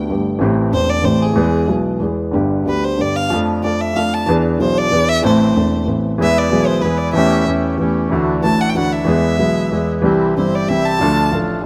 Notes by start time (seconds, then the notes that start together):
0.08 G1 G2 D3 A3 B3
0.12 G4
0.39 A1 A2 E3 A3 C4
0.43 G4
0.71 E1 E2 E3 A3 C4 G4 C5
0.90 D5
1.02 A1 A2 E3 A3 C4 G4 C5
1.22 G#4
1.35 E2 E3 G#3 B3 G#4
1.67 B1 B2 E3 G#3 B3 G#4
2.00 E2 E3 G#3 B3 G#4
2.31 G1 G2 D3 G3 B3 G4
2.64 D2 D3 G3 B3
2.68 G4 B4
2.84 C5
2.97 G1 G2 D3 G3 B3 G4
3.01 D5
3.16 F5
3.30 F2 F3 A3 D4 A4
3.62 F2 F3 A3 D4 A4 D5
3.81 E5
3.94 F2 F3 A3 D4 F5
3.99 A4
4.14 A5
4.28 E2 E3 B3 D4 G#4
4.58 B1 B2 E3 B3 D4 G#4 C5
4.78 D5
4.92 E2 E3 B3 D4 G#4
5.09 E5
5.22 A1 A2 E3 A3 C4 A4 C5
5.54 E1 E2 E3 A3 C4 A4
5.86 A1 A2 E3 B3 C4 A4
6.18 E2 E3 G#3 B3 E4 G#4
6.23 E5
6.38 D5
6.49 B1 B2 E3 G#3 B3 E4 G#4
6.67 C5
6.81 E2 E3 G#3 B3 E4 G#4 B4
6.85 G#4
6.98 D5
7.13 E2 E3 A3 C#4 G4 E5
7.46 E2 E3 A3 C#4 G4
7.78 E2 E3 A3 C#4 G4
8.09 D2 D3 E3 F#3 A3 D4 E4
8.14 F#4
8.42 A1 A2 E3 F#3 A3 D4 E4 F#4 A5
8.61 F#5
8.69 G5
8.74 D2 D3 E3 F#3 A3 D4 E4 F#4
8.78 F#5
8.93 E5
9.05 E2 E3 G#3 B3 E4 G#4
9.37 B1 B2 E3 G#3 B3 E4 G#4
9.71 E2 E3 G#3 B3 E4 G#4
10.02 C2 C3 E3 G3 C4 E4 G4
10.35 G1 G2 E3 G3 C4 E4 G4 C5
10.55 D5
10.67 C2 C3 E3 G3 C4 E4 G4 E5
10.85 A5
10.99 D2 D3 F3 A3 D4 F4
11.03 A4
11.31 A1 A2 F3 A3 D4 F4 A4
11.61 F3 A3